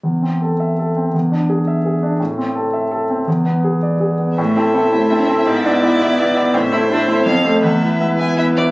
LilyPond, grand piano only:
\new Staff \with { instrumentName = "Grand piano" } { \time 3/4 \key a \minor \tempo 4 = 166 e,8 c'8 a'8 e''8 a'8 c'8 | e,8 d'8 gis'8 e''8 gis'8 d'8 | a,8 c'8 a'8 e''8 a'8 c'8 | e,8 b8 gis'8 d''8 gis'8 b8 |
a,8 <c' e' a'>8 <c' e' a'>8 <c' e' a'>8 <c' e' a'>8 <c' e' a'>8 | gis,8 <b e' d''>8 <b e' d''>8 <b e' d''>8 <b e' d''>8 <b e' d''>8 | a,8 <a e' c''>8 <a e' c''>8 <a e' c''>8 f,8 <a a' c''>8 | e,8 <b e' e''>8 <b e' e''>8 <b e' e''>8 <b e' e''>8 <b e' e''>8 | }